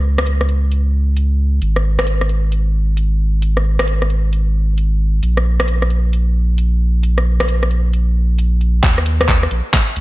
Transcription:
Already playing: sub bass C#2
0.18 cross-stick, closed hi-hat
0.26 closed hi-hat
0.41 cross-stick
0.49 closed hi-hat
0.72 closed hi-hat
1.17 closed hi-hat
1.62 sub bass G#1, closed hi-hat
1.76 cross-stick
1.99 cross-stick, closed hi-hat
2.07 closed hi-hat
2.21 cross-stick
2.29 closed hi-hat
2.52 closed hi-hat
2.97 closed hi-hat
3.42 closed hi-hat
3.57 cross-stick
3.79 cross-stick, closed hi-hat
3.87 closed hi-hat
4.02 cross-stick
4.10 closed hi-hat
4.33 closed hi-hat
4.78 closed hi-hat
5.23 sub bass A#1, closed hi-hat
5.37 cross-stick
5.60 cross-stick, closed hi-hat
5.68 closed hi-hat
5.82 cross-stick
5.90 closed hi-hat
6.13 closed hi-hat
6.58 closed hi-hat
7.03 closed hi-hat
7.18 cross-stick
7.40 cross-stick, closed hi-hat
7.48 closed hi-hat
7.63 cross-stick
7.71 closed hi-hat
7.93 closed hi-hat
8.38 closed hi-hat
8.61 closed hi-hat
8.83 sub bass D#2, kick, clap, closed hi-hat
8.98 cross-stick
9.06 closed hi-hat
9.21 cross-stick, closed hi-hat
9.29 kick, clap, closed hi-hat
9.43 cross-stick
9.51 sub bass A#1, closed hi-hat
9.74 kick, clap, closed hi-hat
9.96 sub bass C#2, closed hi-hat

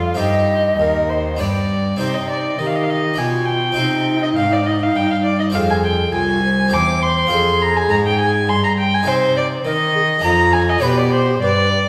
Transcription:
Already playing: harpsichord F2 D4 F4 G#4, cello F2, violin F4, flute F5
0.14 cello G2, harpsichord G2 C4 D#4 G4, violin G4, flute D#5
0.78 cello D#2, harpsichord D#2, violin A#4
1.10 violin C5
1.37 cello G2, harpsichord B3 D4 G4, violin D5
1.41 harpsichord G2
1.96 cello C3, harpsichord C4 D#4 G4, flute D#4, violin C5
2.02 harpsichord C3
2.15 violin D#5
2.30 violin D5
2.58 harpsichord D#3, cello D#3, flute G4, violin D#5
2.67 violin F5
2.76 violin D#5
2.83 violin F5
2.90 violin D#5
3.14 harpsichord D4 G4
3.18 harpsichord B2, cello B2, flute F4, violin G#5
3.46 violin G5
3.72 harpsichord C4 D#4 C5
3.77 harpsichord C3, cello C3, flute D#4
4.23 violin D#5
4.36 harpsichord G#2, cello G#2, violin F5
4.53 violin D5
4.66 violin D#5
4.83 violin F5
4.96 harpsichord G2, cello G2, violin G5
5.10 violin F5
5.24 violin D5
5.40 violin D#5
5.50 harpsichord C4 F4 C5, violin F5
5.54 harpsichord F2, cello F2, flute G#4
5.70 violin G#5
5.84 violin G5
6.13 harpsichord C2, cello C2, flute F4, violin G#5
6.43 flute C5
6.68 harpsichord C4 G4 C5
6.73 harpsichord E2, cello E2, violin D6
7.03 violin C6
7.27 cello F2, harpsichord F4 G#4 C5
7.32 harpsichord F2, flute G#4
7.61 violin A#5
7.76 violin G#5
7.89 harpsichord G#2, cello G#2, violin A#5
8.07 violin G5
8.19 violin G#5
8.47 harpsichord G2, cello G2, violin C6
8.64 violin A#5
8.79 violin G5
8.94 violin G#5
9.03 harpsichord C3 D#4 G#4 C5
9.07 cello C3, violin C5, flute C5
9.37 violin D5
9.65 harpsichord D#3, cello D#3, flute A#4, violin D#5
9.95 flute G#4
10.19 harpsichord D4 G#4 D5
10.24 cello F2, harpsichord F2, flute F4, violin A#5
10.53 violin G#5
10.70 violin D#5
10.79 cello B2, harpsichord D4 G4 D5
10.83 harpsichord B2, flute G4, violin B4
10.98 violin D5
11.12 violin C5
11.41 cello G2, harpsichord G2, flute B4, violin D5
11.71 flute D5

